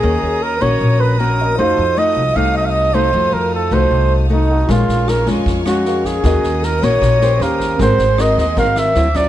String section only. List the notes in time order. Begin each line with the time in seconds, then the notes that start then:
Already playing: C#5 A#5 D#6
1.59 A4 F5
4.69 A#4 F5 G#5 C#6
6.24 D#5 F#5 D#6
7.40 C5 F5 G5
7.79 A#4 F#5 G#5 C6
8.96 C5 E5 D6